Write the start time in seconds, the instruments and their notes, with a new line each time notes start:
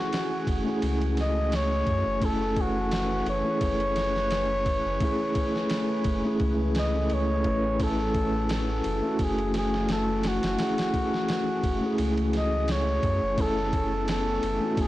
Already playing: ambient pad E3 A3 F#4 G#5, tine electric piano A3 C#4 E4 G#4, muted trumpet F#4
0.13 snare, ride
0.47 sub bass F#1, kick, ride
0.65 tine electric piano A3 C#4 E4
0.69 tine electric piano G#4
0.82 sub bass C#2, ride
1.02 ride
1.17 muted trumpet D#5, snare, ride
1.52 muted trumpet C#5, snare, ride
1.87 sub bass F#2, kick, ride
2.06 sub bass F#1
2.20 tine electric piano A3 C#4 E4, ambient pad B4, kick, ride
2.25 tine electric piano A4, muted trumpet A4
2.57 kick, ride
2.61 muted trumpet F#4
2.91 snare, ride
3.26 sub bass F#1, muted trumpet C#5, ride
3.44 tine electric piano A3 C#4 E4
3.49 tine electric piano G#4
3.61 sub bass F#1, kick, ride
3.80 ride
3.96 snare, ride
4.16 snare
4.31 snare, ride
4.66 kick, ride
4.85 sub bass F#1
5.00 tine electric piano A3 C#4 E4, kick, ride
5.05 tine electric piano G#4
5.35 kick, ride
5.56 snare
5.70 snare, ride
6.04 sub bass F#1, kick, ride
6.25 tine electric piano A3 C#4 E4 G#4
6.40 sub bass C#2, kick, ride
6.75 snare, ride
6.79 muted trumpet D#5
6.94 tine electric piano A3 C#4 E4 A4
7.10 sub bass C#2, ride
7.14 muted trumpet C#5
7.44 sub bass A1, tine electric piano A3 C#4 E4 B4, kick, ride
7.79 tine electric piano A3 C#4 E4, ambient pad F#4, kick, ride
7.83 muted trumpet A4, tine electric piano A4
8.14 kick, ride
8.49 snare, ride
8.53 muted trumpet A4
8.84 sub bass F#1, ride
9.03 tine electric piano A3 C#4 E4
9.07 tine electric piano F#4
9.19 sub bass F#1, kick, ride
9.23 muted trumpet G#4
9.38 ride
9.54 muted trumpet G#4, snare, ride
9.74 snare
9.89 muted trumpet A4, snare, ride
10.23 muted trumpet F#4, snare, ride
10.43 sub bass F#1, snare, ride
10.57 tine electric piano A3 C#4 E4, snare, ride
10.62 tine electric piano G#4
10.78 snare, ride
10.94 kick, ride
11.14 snare
11.29 snare, ride
11.64 sub bass F#1, kick, ride
11.81 tine electric piano A3 C#4 E4
11.86 tine electric piano G#4
11.98 sub bass C#2, ride
12.17 ride
12.33 muted trumpet D#5, snare, ride
12.68 muted trumpet C#5, snare, ride
13.03 sub bass F#2, kick, ride
13.23 sub bass F#1
13.37 tine electric piano A3 C#4 E4, ambient pad B3, kick, ride
13.41 muted trumpet A4, tine electric piano A4
13.73 kick, ride
14.08 muted trumpet A4, snare, ride
14.43 sub bass F#1, ride
14.61 tine electric piano A3 C#4 E4
14.65 tine electric piano F#4
14.77 sub bass F#1, muted trumpet G#4, kick, ride